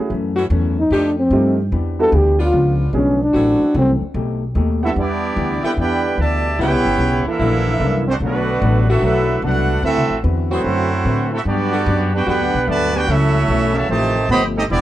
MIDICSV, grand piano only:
0, 0, Header, 1, 2, 480
1, 0, Start_track
1, 0, Key_signature, 1, "minor"
1, 0, Tempo, 405680
1, 127, Time_signature, 4, 2, 24, 8
1, 17523, End_track
2, 0, Start_track
2, 0, Title_t, "Grand piano"
2, 0, Program_c, 0, 0
2, 1563, Note_on_c, 0, 57, 67
2, 1568, Note_on_c, 0, 60, 64
2, 1569, Note_on_c, 0, 63, 64
2, 1572, Note_on_c, 0, 65, 59
2, 1573, Note_on_c, 0, 67, 74
2, 1846, Note_off_c, 0, 57, 0
2, 1849, Note_off_c, 0, 60, 0
2, 1849, Note_off_c, 0, 63, 0
2, 1851, Note_off_c, 0, 65, 0
2, 1851, Note_off_c, 0, 67, 0
2, 2357, Note_on_c, 0, 55, 78
2, 2359, Note_on_c, 0, 59, 68
2, 2359, Note_on_c, 0, 62, 69
2, 2368, Note_on_c, 0, 64, 65
2, 2368, Note_on_c, 0, 66, 86
2, 2507, Note_off_c, 0, 55, 0
2, 2508, Note_off_c, 0, 59, 0
2, 2508, Note_off_c, 0, 62, 0
2, 2512, Note_off_c, 0, 64, 0
2, 2512, Note_off_c, 0, 66, 0
2, 3471, Note_on_c, 0, 56, 70
2, 3477, Note_on_c, 0, 59, 64
2, 3480, Note_on_c, 0, 61, 67
2, 3485, Note_on_c, 0, 62, 63
2, 3485, Note_on_c, 0, 68, 79
2, 3759, Note_off_c, 0, 56, 0
2, 3762, Note_off_c, 0, 59, 0
2, 3763, Note_off_c, 0, 61, 0
2, 3765, Note_off_c, 0, 62, 0
2, 3766, Note_off_c, 0, 68, 0
2, 5706, Note_on_c, 0, 55, 67
2, 5710, Note_on_c, 0, 59, 62
2, 5710, Note_on_c, 0, 62, 63
2, 5713, Note_on_c, 0, 64, 60
2, 5715, Note_on_c, 0, 78, 76
2, 6321, Note_off_c, 0, 55, 0
2, 6323, Note_off_c, 0, 59, 0
2, 6323, Note_off_c, 0, 62, 0
2, 6325, Note_off_c, 0, 64, 0
2, 6326, Note_off_c, 0, 78, 0
2, 17523, End_track
0, 0, End_of_file